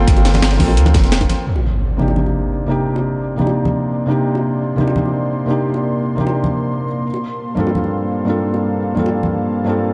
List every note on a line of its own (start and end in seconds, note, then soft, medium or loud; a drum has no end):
0.00 0.57 A#3 loud
0.00 1.43 A#3 medium
0.00 0.59 C4 medium
0.00 0.61 F4 medium
0.00 0.62 A4 loud
0.00 1.43 F5 medium
0.00 1.44 G5 medium
0.00 1.43 C6 medium
0.07 0.61 G1 loud
0.07 kick loud
0.07 closed hi-hat loud
0.07 ride medium
0.17 closed hi-hat soft
0.17 high bongo medium
0.25 snare loud
0.25 snare soft
0.25 closed hi-hat medium
0.25 ride medium
0.34 snare loud
0.34 closed hi-hat soft
0.34 ride medium
0.34 high conga medium
0.42 snare loud
0.42 closed hi-hat loud
0.42 ride medium
0.51 snare loud
0.51 ride medium
0.57 0.79 A#1 loud
0.57 1.26 A#3 medium
0.57 1.27 C4 medium
0.57 1.28 F4 medium
0.57 kick medium
0.57 snare soft
0.57 open hi-hat medium
0.57 ride medium
0.57 high conga medium
0.62 1.29 A4 loud
0.68 snare soft
0.68 high bongo medium
0.77 0.96 D2 loud
0.77 closed hi-hat loud
0.77 ride medium
0.86 snare medium
0.86 ride soft
0.86 high bongo soft
0.86 high conga loud
0.94 1.28 F1 loud
0.94 kick loud
0.94 snare loud
0.94 closed hi-hat medium
0.94 ride medium
0.94 high bongo soft
1.04 snare medium
1.04 closed hi-hat soft
1.12 snare loud
1.12 closed hi-hat loud
1.12 ride medium
1.21 kick medium
1.21 snare medium
1.21 ride soft
1.29 snare soft
1.29 closed hi-hat medium
1.29 ride medium
1.29 high conga medium
1.47 9.93 A#3 medium
1.47 7.01 D5 medium
1.47 9.80 C6 medium
1.47 crash medium
1.47 impact medium
1.56 high bongo soft
1.97 2.65 C3 medium
1.97 2.66 A#3 medium
1.97 2.67 D4 medium
1.97 2.68 D#4 medium
1.97 high conga medium
2.02 2.68 G4 medium
2.08 high bongo medium
2.16 high conga medium
2.26 high bongo soft
2.66 3.35 C3 medium
2.66 3.36 A#3 medium
2.66 3.37 D4 medium
2.66 3.37 D#4 medium
2.71 3.38 G4 medium
2.96 high bongo medium
3.36 4.04 C3 medium
3.36 4.06 A#3 medium
3.36 4.06 D4 medium
3.36 4.07 D#4 medium
3.36 high conga medium
3.41 4.08 G4 medium
3.47 high bongo medium
3.65 high conga medium
4.06 4.74 C3 medium
4.06 4.75 A#3 medium
4.06 4.76 D4 medium
4.06 4.77 D#4 medium
4.11 4.77 G4 medium
4.35 high bongo soft
4.76 5.44 C3 medium
4.76 5.45 A#3 medium
4.76 5.46 D4 medium
4.76 5.47 D#4 medium
4.76 high conga medium
4.81 5.47 G4 medium
4.88 high bongo medium
4.96 high conga medium
5.06 high bongo soft
5.46 6.14 C3 medium
5.46 6.15 A#3 medium
5.46 6.16 D4 medium
5.46 6.16 D#4 medium
5.50 6.17 G4 medium
5.74 high bongo soft
6.16 6.85 C3 medium
6.16 6.85 A#3 medium
6.16 6.86 D4 medium
6.16 6.86 D#4 medium
6.16 high conga medium
6.21 6.87 G4 medium
6.27 high bongo medium
6.44 high conga medium
7.05 9.93 G4 medium
7.05 9.93 F5 medium
7.05 9.93 A5 medium
7.14 high bongo soft
7.55 8.23 G2 medium
7.55 8.24 A#3 medium
7.55 8.25 C4 medium
7.55 8.25 D4 medium
7.55 8.26 F4 medium
7.55 high conga medium
7.60 8.26 A4 medium
7.67 high bongo medium
7.75 high conga medium
7.84 high bongo soft
8.25 8.93 G2 medium
8.25 8.94 A#3 medium
8.25 8.95 C4 medium
8.25 8.95 D4 medium
8.25 8.96 F4 medium
8.30 8.96 A4 medium
8.54 high bongo soft
8.94 9.63 G2 medium
8.94 9.64 A#3 medium
8.94 9.64 C4 medium
8.94 9.65 D4 medium
8.94 9.65 F4 medium
8.94 high conga medium
8.99 9.66 A4 medium
9.06 high bongo medium
9.23 high conga medium
9.64 9.93 G2 medium
9.64 9.93 A#3 medium
9.64 9.93 C4 medium
9.64 9.93 D4 medium
9.64 9.93 F4 medium
9.69 9.93 A4 medium
9.84 9.93 D6 medium